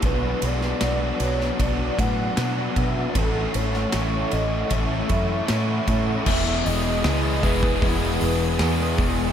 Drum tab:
CC |----------------|----------------|x---------------|
RD |x-x-x-x-x-x-x-x-|x-x-x-x-x-x-x-x-|----------------|
HH |----------------|----------------|--o-o-o-o-o-o-o-|
SD |---oo--o----o---|---oo-------o---|----o-------o---|
BD |o-------o-o---o-|o-------o-o---o-|o-----ooo-----o-|